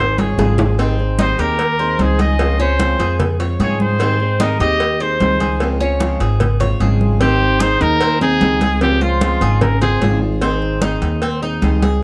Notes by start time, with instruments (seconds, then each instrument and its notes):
Already playing: upright bass G#1, cuban tres G#4, trumpet C5
0.18 steel-string acoustic guitar G#3 C4 F4, trumpet G#4, cuban tres C#5, cowbell, high conga
0.38 upright bass G#1, steel-string acoustic guitar C#3 F3 G#3 C4 F4, cuban tres G#4, cowbell, high bongo, high conga
0.58 low bongo, low conga
0.78 steel-string acoustic guitar D#3 G3 C4 D#4 G#4, cuban tres C4, cowbell, high conga
0.98 steel-string acoustic guitar C4 D#4 G#4, high conga
1.18 steel-string acoustic guitar D#3 G3 C4 D#4 G#4, cuban tres D#4, trumpet C5, cowbell, high conga
1.38 upright bass D#2, steel-string acoustic guitar C4 D#4 G#4, cuban tres G4, trumpet A#4, cowbell, high conga
1.59 muted steel-string acoustic guitar stroke, cowbell, high conga
1.79 steel-string acoustic guitar C4 D#4 G#4, cuban tres C5, high conga
1.99 upright bass C#2, steel-string acoustic guitar D#3 C4 D#4 G#4, trumpet G#4, cowbell, high conga
2.19 cuban tres G#4, trumpet D#5, cowbell, high conga
2.39 steel-string acoustic guitar C#3 F3 G#3 C4 F4, cowbell, high conga
2.59 steel-string acoustic guitar G#3 C4 F4, cuban tres C#4, trumpet C5, high conga
2.79 steel-string acoustic guitar C#3 F3 G#3 C4 F4, cowbell, high conga
2.99 upright bass F2, steel-string acoustic guitar G#3 C4 F4, cuban tres G#4, cowbell
3.19 muted steel-string acoustic guitar stroke, cowbell, high conga, low conga
3.39 steel-string acoustic guitar G#3 C4 F4, cuban tres C#5, cowbell, high conga
3.59 upright bass G#2, steel-string acoustic guitar C#3 F3 G#3 C4 F4, cuban tres G#4, trumpet C#5, cowbell, high conga
3.80 trumpet C5, high conga
4.00 steel-string acoustic guitar D#3 G3 C4 D#4 G#4, cuban tres C4, cowbell
4.20 steel-string acoustic guitar C4 D#4 G#4, high conga
4.40 steel-string acoustic guitar D#3 G3 C4 D#4 G#4, cuban tres D#4, trumpet A#4, cowbell, high conga
4.60 upright bass D#2, steel-string acoustic guitar C4 D#4 G#4, cuban tres G4, trumpet D#5, cowbell, high conga
4.80 muted steel-string acoustic guitar stroke, cowbell, high conga
5.00 steel-string acoustic guitar C4 D#4 G#4, cuban tres C5, trumpet C5, high conga
5.20 upright bass C#2, steel-string acoustic guitar D#3 C4 D#4 G#4, cowbell, high conga
5.40 cuban tres G#4, cowbell, high conga
5.60 steel-string acoustic guitar C#3 F3 G#3 C4 F4, cowbell, high conga
5.80 steel-string acoustic guitar G#3 C4 F4, cuban tres C#4, high conga
6.00 steel-string acoustic guitar C#3 F3 G#3 C4 F4, cowbell, high conga
6.20 upright bass G#1, steel-string acoustic guitar G#3 C4 F4, cuban tres G#4, cowbell
6.40 muted steel-string acoustic guitar stroke, cowbell, high conga, low conga
6.60 steel-string acoustic guitar G#3 C4 F4, cuban tres C#5, cowbell, high conga, low conga
6.80 upright bass G#1, steel-string acoustic guitar C#3 F3 G#3 C4 F4, cuban tres G#4, cowbell, high conga
7.01 high conga
7.20 steel-string acoustic guitar D#3 C4 D#4, cuban tres C4, trumpet G4, cowbell
7.41 high conga
7.60 steel-string acoustic guitar D#3 C4 D#4 G#4, cuban tres D#4, trumpet C5, cowbell, high conga
7.81 upright bass D#2, nylon-string guitar D#4, trumpet A#4, cowbell, high conga
8.01 cuban tres C4, muted steel-string acoustic guitar stroke, cowbell, high conga
8.21 steel-string acoustic guitar C4 D#4 G#4, cuban tres D#4, trumpet G#4, high conga
8.41 upright bass C#2, steel-string acoustic guitar D#3 G3 C4 D#4 G#4, cowbell, high conga
8.61 steel-string acoustic guitar C4 D#4, cuban tres G#4, cowbell, high conga
8.81 steel-string acoustic guitar C#3 F3 G#3 C4 F4, trumpet G4, cowbell, high conga
9.01 nylon-string guitar G#3, trumpet F4, cuban tres C5, high conga
9.21 steel-string acoustic guitar C#3 F3 G#3 C4 F4, cowbell, high conga
9.41 upright bass G#1, cuban tres G#4, cowbell
9.61 nylon-string guitar C#4, trumpet A#4, muted steel-string acoustic guitar stroke, cowbell, high conga, low conga
9.81 steel-string acoustic guitar G#3 C4 F4, trumpet G#4, cuban tres C5, cowbell, high conga, low conga
10.01 upright bass G#1, steel-string acoustic guitar C#3 F3 G#3 C4 F4, cuban tres G#4, cowbell, high conga
10.21 steel-string acoustic guitar G#3 C4 F4
10.41 steel-string acoustic guitar D#3 C4 D#4 G#4, cuban tres C4, cowbell, high conga
10.62 high conga
10.81 steel-string acoustic guitar D#3 C4 D#4 G#4, cuban tres D#4, cowbell, high conga
11.02 upright bass D#2, cowbell, high conga
11.22 cuban tres C4, muted steel-string acoustic guitar stroke, cowbell, high conga
11.42 steel-string acoustic guitar C4 D#4 G#4, cuban tres D#4, high conga
11.61 upright bass C#2, steel-string acoustic guitar D#3 G3 C4 D#4 G#4, cowbell, high conga
11.82 steel-string acoustic guitar C4 D#4 G#4, cuban tres G#4, cowbell, high conga